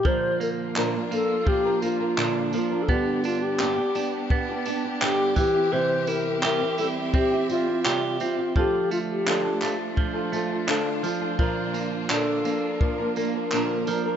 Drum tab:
TB |-x-x-x-x|-x-x-x-x|-x-x-x-x|-x-x-x-x|
CP |--x---x-|--x---x-|--x---x-|--xx--x-|
BD |o---o---|o---o--o|----o---|o---o---|

TB |-x-x-x-x|
CP |--x---x-|
BD |o---o---|